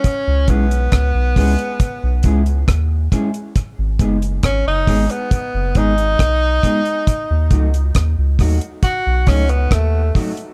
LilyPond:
<<
  \new Staff \with { instrumentName = "Clean electric guitar" } { \time 4/4 \key cis \minor \tempo 4 = 68 r8 <gis cis' e' gis'>8 r8 <gis cis' e' gis'>8 r8 <gis cis' e' gis'>8 r8 <gis cis' e' gis'>8 | r8 <gis b dis' gis'>8 r8 <gis b dis' gis'>8 r8 <gis b dis' gis'>8 r8 <gis b dis' gis'>8 | r8 <fis a dis' fis'>8 r8 <fis a dis' fis'>8 r8 <fis a dis' fis'>8 r8 <fis a dis' fis'>8 | }
  \new Staff \with { instrumentName = "Tenor saxophone" } { \time 4/4 \key cis \minor cis'8 b2~ b8 r4 | r4 cis'16 dis'8 b8. dis'4.~ | dis'4 r4 fis'8 cis'16 b16 a8 r8 | }
  \new Staff \with { instrumentName = "Sub bass" } { \clef bass \time 4/4 \key cis \minor r16 cis,16 b,,8 cis,16 b,,16 cis,16 r8 b,,16 cis,8 dis,8 r8 | r16 gis,,16 fis,,8 gis,,16 fis,,16 gis,,16 r8 fis,,16 gis,,8 b,,8 r8 | r16 dis,16 cis,8 dis,16 cis,16 dis,16 r8 b,,16 cis,8 dis,8 r8 | }
  \new DrumStaff \with { instrumentName = "Drums" } \drummode { \time 4/4 <hh bd>8 <hh bd>16 hh16 <hh bd ss>8 <hho bd>16 hh16 <hh bd>8 <hh bd>16 hh16 <hh bd ss>8 <hh bd>16 hh16 | <hh bd>8 <hh bd>16 hh16 <hh bd ss>8 <hho bd>16 hh16 <hh bd>8 <hh bd>16 hh16 <hh bd ss>8 <hh bd>16 hh16 | <hh bd>8 <hh bd>16 hh16 <hh bd ss>8 <hho bd>16 hh16 <hh bd>8 <hho bd ss>16 hh16 <hh bd ss>8 <hho bd>16 hh16 | }
>>